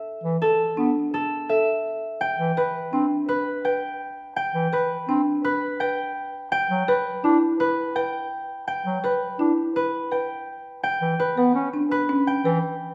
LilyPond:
<<
  \new Staff \with { instrumentName = "Harp" } { \time 6/4 \key g \major \tempo 4 = 167 <a' b' e'' g''>4 a'2 a'4 e''2 | g''4 b'2 b'4 g''2 | g''4 b'2 b'4 g''2 | g''4 b'2 b'4 g''2 |
g''4 b'2 b'4 g''2 | \key e \dorian g''4 b'2 b'4 g''2 | }
  \new Staff \with { instrumentName = "Marimba" } { \time 6/4 \key g \major r4 a'8 r8 d'8 r4. a'8 r4. | r4 b'8 r8 d'8 r4. b'8 r4. | r4 b'8 r8 d'8 r4. b'8 r4. | r4 b'8 r8 e'8 r4. b'8 r4. |
r4 b'8 r8 e'8 r4. b'8 r4. | \key e \dorian r4. b'8 r8 d'8 r8 cis'8 r8 b'8 r4 | }
  \new Staff \with { instrumentName = "Bass clarinet" } { \clef bass \time 6/4 \key g \major r8 e8 r4 b8 r2. r8 | r8 e8 r4 c'8 r2. r8 | r8 e8 r4 c'8 r2. r8 | r8 fis8 r4 d'8 r2. r8 |
r8 fis8 r4 d'8 r2. r8 | \key e \dorian r8 e8 r8 b8 cis'8 r2 e8 r4 | }
>>